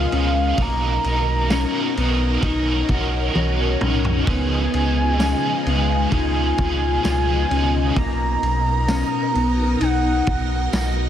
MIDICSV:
0, 0, Header, 1, 8, 480
1, 0, Start_track
1, 0, Tempo, 923077
1, 303, Time_signature, 4, 2, 24, 8
1, 5768, End_track
2, 0, Start_track
2, 0, Title_t, "Soft synth lead"
2, 0, Program_c, 0, 80
2, 0, Note_on_c, 0, 77, 94
2, 318, Note_on_c, 0, 82, 118
2, 326, Note_off_c, 0, 77, 0
2, 1271, Note_off_c, 0, 82, 0
2, 2232, Note_on_c, 0, 80, 115
2, 3167, Note_off_c, 0, 80, 0
2, 3195, Note_on_c, 0, 80, 121
2, 4128, Note_off_c, 0, 80, 0
2, 4149, Note_on_c, 0, 82, 127
2, 5106, Note_on_c, 0, 78, 102
2, 5113, Note_off_c, 0, 82, 0
2, 5768, Note_off_c, 0, 78, 0
2, 5768, End_track
3, 0, Start_track
3, 0, Title_t, "Vibraphone"
3, 0, Program_c, 1, 11
3, 0, Note_on_c, 1, 70, 53
3, 526, Note_off_c, 1, 70, 0
3, 1746, Note_on_c, 1, 70, 57
3, 1892, Note_on_c, 1, 73, 49
3, 2443, Note_off_c, 1, 70, 0
3, 2577, Note_off_c, 1, 73, 0
3, 2704, Note_on_c, 1, 68, 47
3, 3188, Note_on_c, 1, 65, 78
3, 3987, Note_off_c, 1, 68, 0
3, 4364, Note_off_c, 1, 65, 0
3, 5768, End_track
4, 0, Start_track
4, 0, Title_t, "Overdriven electric guitar"
4, 0, Program_c, 2, 29
4, 0, Note_on_c, 2, 49, 80
4, 0, Note_on_c, 2, 53, 86
4, 0, Note_on_c, 2, 56, 87
4, 0, Note_on_c, 2, 59, 97
4, 0, Note_on_c, 2, 63, 90
4, 56, Note_off_c, 2, 63, 0
4, 57, Note_on_c, 2, 68, 58
4, 60, Note_off_c, 2, 49, 0
4, 62, Note_off_c, 2, 53, 0
4, 63, Note_off_c, 2, 56, 0
4, 63, Note_off_c, 2, 59, 0
4, 63, Note_on_c, 2, 63, 54
4, 69, Note_on_c, 2, 59, 52
4, 75, Note_on_c, 2, 56, 44
4, 290, Note_off_c, 2, 59, 0
4, 294, Note_off_c, 2, 56, 0
4, 295, Note_off_c, 2, 63, 0
4, 296, Note_on_c, 2, 59, 75
4, 300, Note_off_c, 2, 68, 0
4, 302, Note_on_c, 2, 63, 83
4, 307, Note_on_c, 2, 66, 86
4, 311, Note_on_c, 2, 70, 101
4, 533, Note_off_c, 2, 70, 0
4, 539, Note_off_c, 2, 59, 0
4, 539, Note_on_c, 2, 70, 50
4, 542, Note_off_c, 2, 63, 0
4, 543, Note_off_c, 2, 66, 0
4, 550, Note_on_c, 2, 66, 45
4, 559, Note_on_c, 2, 63, 42
4, 777, Note_off_c, 2, 63, 0
4, 780, Note_on_c, 2, 59, 73
4, 781, Note_off_c, 2, 70, 0
4, 783, Note_off_c, 2, 66, 0
4, 783, Note_on_c, 2, 63, 77
4, 789, Note_on_c, 2, 66, 97
4, 792, Note_on_c, 2, 70, 88
4, 1011, Note_off_c, 2, 70, 0
4, 1017, Note_on_c, 2, 70, 60
4, 1021, Note_off_c, 2, 59, 0
4, 1021, Note_off_c, 2, 66, 0
4, 1023, Note_off_c, 2, 63, 0
4, 1028, Note_on_c, 2, 66, 56
4, 1035, Note_on_c, 2, 63, 44
4, 1254, Note_off_c, 2, 63, 0
4, 1254, Note_on_c, 2, 59, 60
4, 1260, Note_off_c, 2, 70, 0
4, 1261, Note_off_c, 2, 66, 0
4, 1261, Note_on_c, 2, 63, 61
4, 1267, Note_on_c, 2, 66, 66
4, 1275, Note_on_c, 2, 70, 79
4, 1489, Note_off_c, 2, 70, 0
4, 1496, Note_on_c, 2, 70, 71
4, 1498, Note_off_c, 2, 59, 0
4, 1500, Note_off_c, 2, 66, 0
4, 1502, Note_off_c, 2, 63, 0
4, 1506, Note_on_c, 2, 66, 51
4, 1515, Note_on_c, 2, 63, 44
4, 1739, Note_off_c, 2, 63, 0
4, 1739, Note_off_c, 2, 70, 0
4, 1740, Note_on_c, 2, 59, 90
4, 1743, Note_off_c, 2, 66, 0
4, 1745, Note_on_c, 2, 63, 99
4, 1749, Note_on_c, 2, 66, 111
4, 1753, Note_on_c, 2, 70, 91
4, 1972, Note_off_c, 2, 70, 0
4, 1978, Note_on_c, 2, 70, 66
4, 1981, Note_off_c, 2, 59, 0
4, 1983, Note_off_c, 2, 66, 0
4, 1984, Note_off_c, 2, 63, 0
4, 1989, Note_on_c, 2, 66, 56
4, 1997, Note_on_c, 2, 63, 56
4, 2221, Note_off_c, 2, 70, 0
4, 2221, Note_on_c, 2, 49, 88
4, 2223, Note_on_c, 2, 53, 79
4, 2226, Note_off_c, 2, 63, 0
4, 2226, Note_off_c, 2, 66, 0
4, 2226, Note_on_c, 2, 56, 91
4, 2229, Note_on_c, 2, 59, 86
4, 2232, Note_on_c, 2, 63, 97
4, 2234, Note_on_c, 2, 68, 85
4, 2454, Note_off_c, 2, 68, 0
4, 2460, Note_on_c, 2, 68, 52
4, 2462, Note_off_c, 2, 49, 0
4, 2462, Note_off_c, 2, 63, 0
4, 2463, Note_off_c, 2, 53, 0
4, 2464, Note_off_c, 2, 56, 0
4, 2466, Note_off_c, 2, 59, 0
4, 2468, Note_on_c, 2, 63, 48
4, 2472, Note_on_c, 2, 59, 49
4, 2479, Note_on_c, 2, 56, 45
4, 2698, Note_on_c, 2, 49, 86
4, 2700, Note_off_c, 2, 56, 0
4, 2701, Note_off_c, 2, 59, 0
4, 2702, Note_off_c, 2, 68, 0
4, 2703, Note_off_c, 2, 63, 0
4, 2703, Note_on_c, 2, 53, 81
4, 2706, Note_on_c, 2, 56, 96
4, 2707, Note_on_c, 2, 59, 79
4, 2709, Note_on_c, 2, 63, 84
4, 2712, Note_on_c, 2, 68, 89
4, 2931, Note_off_c, 2, 68, 0
4, 2938, Note_on_c, 2, 68, 59
4, 2939, Note_off_c, 2, 63, 0
4, 2941, Note_off_c, 2, 49, 0
4, 2943, Note_off_c, 2, 53, 0
4, 2944, Note_off_c, 2, 56, 0
4, 2945, Note_off_c, 2, 59, 0
4, 2946, Note_on_c, 2, 63, 62
4, 2952, Note_on_c, 2, 59, 51
4, 2957, Note_on_c, 2, 56, 50
4, 3171, Note_off_c, 2, 56, 0
4, 3177, Note_on_c, 2, 56, 50
4, 3179, Note_off_c, 2, 59, 0
4, 3180, Note_off_c, 2, 68, 0
4, 3184, Note_off_c, 2, 63, 0
4, 3186, Note_on_c, 2, 59, 66
4, 3192, Note_on_c, 2, 63, 61
4, 3197, Note_on_c, 2, 68, 55
4, 3414, Note_off_c, 2, 68, 0
4, 3420, Note_off_c, 2, 56, 0
4, 3420, Note_on_c, 2, 68, 58
4, 3421, Note_off_c, 2, 63, 0
4, 3424, Note_off_c, 2, 59, 0
4, 3427, Note_on_c, 2, 63, 50
4, 3434, Note_on_c, 2, 59, 52
4, 3438, Note_on_c, 2, 56, 45
4, 3656, Note_on_c, 2, 49, 88
4, 3657, Note_off_c, 2, 56, 0
4, 3659, Note_off_c, 2, 59, 0
4, 3660, Note_on_c, 2, 53, 93
4, 3661, Note_off_c, 2, 68, 0
4, 3663, Note_off_c, 2, 63, 0
4, 3664, Note_on_c, 2, 56, 81
4, 3666, Note_on_c, 2, 59, 89
4, 3669, Note_on_c, 2, 63, 81
4, 3670, Note_on_c, 2, 68, 90
4, 3890, Note_off_c, 2, 68, 0
4, 3897, Note_on_c, 2, 68, 57
4, 3899, Note_off_c, 2, 49, 0
4, 3900, Note_off_c, 2, 63, 0
4, 3901, Note_off_c, 2, 53, 0
4, 3903, Note_off_c, 2, 56, 0
4, 3904, Note_off_c, 2, 59, 0
4, 3906, Note_on_c, 2, 63, 59
4, 3910, Note_on_c, 2, 59, 57
4, 3915, Note_on_c, 2, 56, 50
4, 4140, Note_off_c, 2, 68, 0
4, 4144, Note_off_c, 2, 63, 0
4, 4146, Note_off_c, 2, 59, 0
4, 4149, Note_off_c, 2, 56, 0
4, 5768, End_track
5, 0, Start_track
5, 0, Title_t, "Clean electric guitar"
5, 0, Program_c, 3, 27
5, 0, Note_on_c, 3, 65, 91
5, 63, Note_off_c, 3, 65, 0
5, 63, Note_on_c, 3, 61, 78
5, 303, Note_off_c, 3, 61, 0
5, 305, Note_on_c, 3, 58, 84
5, 784, Note_off_c, 3, 58, 0
5, 786, Note_on_c, 3, 61, 88
5, 1024, Note_off_c, 3, 61, 0
5, 1027, Note_on_c, 3, 59, 75
5, 1263, Note_off_c, 3, 59, 0
5, 1266, Note_on_c, 3, 63, 85
5, 1504, Note_off_c, 3, 63, 0
5, 1506, Note_on_c, 3, 66, 72
5, 1736, Note_off_c, 3, 66, 0
5, 1742, Note_on_c, 3, 66, 97
5, 1982, Note_off_c, 3, 66, 0
5, 1983, Note_on_c, 3, 61, 79
5, 2220, Note_off_c, 3, 61, 0
5, 2222, Note_on_c, 3, 59, 78
5, 2698, Note_off_c, 3, 59, 0
5, 2700, Note_on_c, 3, 61, 79
5, 2941, Note_off_c, 3, 61, 0
5, 2946, Note_on_c, 3, 59, 74
5, 3183, Note_off_c, 3, 59, 0
5, 3186, Note_on_c, 3, 63, 94
5, 3424, Note_off_c, 3, 63, 0
5, 3426, Note_on_c, 3, 65, 74
5, 3656, Note_off_c, 3, 65, 0
5, 3662, Note_on_c, 3, 65, 102
5, 3901, Note_on_c, 3, 61, 79
5, 3902, Note_off_c, 3, 65, 0
5, 4141, Note_on_c, 3, 58, 93
5, 4142, Note_off_c, 3, 61, 0
5, 4620, Note_on_c, 3, 61, 81
5, 4622, Note_off_c, 3, 58, 0
5, 4854, Note_off_c, 3, 61, 0
5, 4856, Note_on_c, 3, 59, 76
5, 5098, Note_off_c, 3, 59, 0
5, 5100, Note_on_c, 3, 63, 89
5, 5340, Note_on_c, 3, 66, 77
5, 5341, Note_off_c, 3, 63, 0
5, 5574, Note_off_c, 3, 66, 0
5, 5580, Note_on_c, 3, 66, 91
5, 5768, Note_off_c, 3, 66, 0
5, 5768, End_track
6, 0, Start_track
6, 0, Title_t, "String machine"
6, 0, Program_c, 4, 50
6, 0, Note_on_c, 4, 47, 69
6, 0, Note_on_c, 4, 49, 78
6, 0, Note_on_c, 4, 56, 65
6, 0, Note_on_c, 4, 63, 80
6, 0, Note_on_c, 4, 65, 80
6, 285, Note_off_c, 4, 49, 0
6, 285, Note_off_c, 4, 56, 0
6, 285, Note_off_c, 4, 63, 0
6, 285, Note_off_c, 4, 65, 0
6, 302, Note_on_c, 4, 70, 84
6, 306, Note_on_c, 4, 63, 78
6, 1244, Note_off_c, 4, 47, 0
6, 1263, Note_on_c, 4, 61, 72
6, 2203, Note_off_c, 4, 70, 0
6, 2213, Note_off_c, 4, 61, 0
6, 2216, Note_on_c, 4, 49, 78
6, 2217, Note_on_c, 4, 56, 67
6, 2218, Note_on_c, 4, 65, 86
6, 2219, Note_on_c, 4, 47, 70
6, 4120, Note_off_c, 4, 49, 0
6, 4120, Note_off_c, 4, 56, 0
6, 4121, Note_off_c, 4, 65, 0
6, 4139, Note_on_c, 4, 70, 74
6, 5768, Note_off_c, 4, 47, 0
6, 5768, Note_off_c, 4, 63, 0
6, 5768, Note_off_c, 4, 70, 0
6, 5768, End_track
7, 0, Start_track
7, 0, Title_t, "Sub bass"
7, 0, Program_c, 5, 38
7, 65, Note_on_c, 5, 37, 98
7, 275, Note_off_c, 5, 37, 0
7, 301, Note_on_c, 5, 35, 114
7, 513, Note_off_c, 5, 35, 0
7, 545, Note_on_c, 5, 35, 93
7, 861, Note_off_c, 5, 35, 0
7, 1026, Note_on_c, 5, 35, 109
7, 1236, Note_off_c, 5, 35, 0
7, 1264, Note_on_c, 5, 35, 104
7, 1474, Note_off_c, 5, 35, 0
7, 1504, Note_on_c, 5, 35, 90
7, 1715, Note_off_c, 5, 35, 0
7, 1747, Note_on_c, 5, 35, 108
7, 1956, Note_off_c, 5, 35, 0
7, 1987, Note_on_c, 5, 35, 104
7, 2196, Note_off_c, 5, 35, 0
7, 2221, Note_on_c, 5, 37, 92
7, 2433, Note_off_c, 5, 37, 0
7, 2464, Note_on_c, 5, 37, 99
7, 2780, Note_off_c, 5, 37, 0
7, 2944, Note_on_c, 5, 37, 100
7, 3155, Note_off_c, 5, 37, 0
7, 3184, Note_on_c, 5, 37, 107
7, 3394, Note_off_c, 5, 37, 0
7, 3425, Note_on_c, 5, 37, 93
7, 3635, Note_off_c, 5, 37, 0
7, 3665, Note_on_c, 5, 37, 112
7, 3875, Note_off_c, 5, 37, 0
7, 3904, Note_on_c, 5, 37, 103
7, 4115, Note_off_c, 5, 37, 0
7, 4141, Note_on_c, 5, 35, 101
7, 4353, Note_off_c, 5, 35, 0
7, 4381, Note_on_c, 5, 35, 104
7, 4698, Note_off_c, 5, 35, 0
7, 4863, Note_on_c, 5, 35, 98
7, 5074, Note_off_c, 5, 35, 0
7, 5101, Note_on_c, 5, 35, 105
7, 5313, Note_off_c, 5, 35, 0
7, 5344, Note_on_c, 5, 35, 95
7, 5555, Note_off_c, 5, 35, 0
7, 5579, Note_on_c, 5, 35, 105
7, 5768, Note_off_c, 5, 35, 0
7, 5768, End_track
8, 0, Start_track
8, 0, Title_t, "Drums"
8, 63, Note_on_c, 9, 51, 43
8, 115, Note_off_c, 9, 51, 0
8, 300, Note_on_c, 9, 51, 62
8, 301, Note_on_c, 9, 36, 99
8, 352, Note_off_c, 9, 51, 0
8, 353, Note_off_c, 9, 36, 0
8, 542, Note_on_c, 9, 51, 42
8, 594, Note_off_c, 9, 51, 0
8, 781, Note_on_c, 9, 38, 126
8, 781, Note_on_c, 9, 51, 63
8, 783, Note_on_c, 9, 54, 64
8, 833, Note_off_c, 9, 38, 0
8, 833, Note_off_c, 9, 51, 0
8, 835, Note_off_c, 9, 54, 0
8, 1026, Note_on_c, 9, 51, 45
8, 1078, Note_off_c, 9, 51, 0
8, 1261, Note_on_c, 9, 51, 49
8, 1262, Note_on_c, 9, 36, 87
8, 1313, Note_off_c, 9, 51, 0
8, 1314, Note_off_c, 9, 36, 0
8, 1500, Note_on_c, 9, 51, 45
8, 1504, Note_on_c, 9, 36, 108
8, 1552, Note_off_c, 9, 51, 0
8, 1556, Note_off_c, 9, 36, 0
8, 1742, Note_on_c, 9, 48, 65
8, 1794, Note_off_c, 9, 48, 0
8, 1981, Note_on_c, 9, 45, 92
8, 2033, Note_off_c, 9, 45, 0
8, 2104, Note_on_c, 9, 43, 97
8, 2156, Note_off_c, 9, 43, 0
8, 2220, Note_on_c, 9, 51, 60
8, 2222, Note_on_c, 9, 36, 106
8, 2272, Note_off_c, 9, 51, 0
8, 2274, Note_off_c, 9, 36, 0
8, 2463, Note_on_c, 9, 51, 45
8, 2515, Note_off_c, 9, 51, 0
8, 2703, Note_on_c, 9, 38, 120
8, 2703, Note_on_c, 9, 51, 64
8, 2704, Note_on_c, 9, 54, 69
8, 2755, Note_off_c, 9, 38, 0
8, 2755, Note_off_c, 9, 51, 0
8, 2756, Note_off_c, 9, 54, 0
8, 2945, Note_on_c, 9, 51, 42
8, 2997, Note_off_c, 9, 51, 0
8, 3182, Note_on_c, 9, 36, 85
8, 3182, Note_on_c, 9, 51, 58
8, 3234, Note_off_c, 9, 36, 0
8, 3234, Note_off_c, 9, 51, 0
8, 3422, Note_on_c, 9, 51, 43
8, 3425, Note_on_c, 9, 36, 105
8, 3474, Note_off_c, 9, 51, 0
8, 3477, Note_off_c, 9, 36, 0
8, 3664, Note_on_c, 9, 51, 62
8, 3664, Note_on_c, 9, 54, 76
8, 3665, Note_on_c, 9, 38, 117
8, 3716, Note_off_c, 9, 51, 0
8, 3716, Note_off_c, 9, 54, 0
8, 3717, Note_off_c, 9, 38, 0
8, 3905, Note_on_c, 9, 51, 47
8, 3957, Note_off_c, 9, 51, 0
8, 4141, Note_on_c, 9, 51, 61
8, 4142, Note_on_c, 9, 36, 100
8, 4193, Note_off_c, 9, 51, 0
8, 4194, Note_off_c, 9, 36, 0
8, 4383, Note_on_c, 9, 51, 41
8, 4435, Note_off_c, 9, 51, 0
8, 4619, Note_on_c, 9, 38, 127
8, 4619, Note_on_c, 9, 51, 62
8, 4621, Note_on_c, 9, 54, 69
8, 4671, Note_off_c, 9, 38, 0
8, 4671, Note_off_c, 9, 51, 0
8, 4673, Note_off_c, 9, 54, 0
8, 4863, Note_on_c, 9, 51, 39
8, 4915, Note_off_c, 9, 51, 0
8, 5100, Note_on_c, 9, 51, 58
8, 5152, Note_off_c, 9, 51, 0
8, 5338, Note_on_c, 9, 51, 43
8, 5342, Note_on_c, 9, 36, 101
8, 5390, Note_off_c, 9, 51, 0
8, 5394, Note_off_c, 9, 36, 0
8, 5580, Note_on_c, 9, 54, 71
8, 5581, Note_on_c, 9, 38, 127
8, 5581, Note_on_c, 9, 51, 57
8, 5632, Note_off_c, 9, 54, 0
8, 5633, Note_off_c, 9, 38, 0
8, 5633, Note_off_c, 9, 51, 0
8, 5768, End_track
0, 0, End_of_file